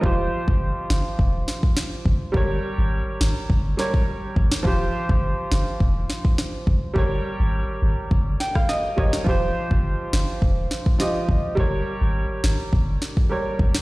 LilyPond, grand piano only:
\new Staff \with { instrumentName = "Grand piano" } { \time 4/4 \key f \minor \tempo 4 = 104 << { r1 | r1 | r1 | r2 r8 g''16 f''16 ees''8 des''8 |
r1 | r1 | } \\ { <f f' g' c''>1 | <g g' bes' des''>2~ <g g' bes' des''>8 <g g' bes' des''>4. | <f f' g' c''>1 | <g g' bes' des''>2.~ <g g' bes' des''>8 <g g' bes' ees''>8 |
<f f' g' c''>2. <f f' g' ees''>4 | <g g' bes' des''>2. <g g' bes' des''>4 | } >> }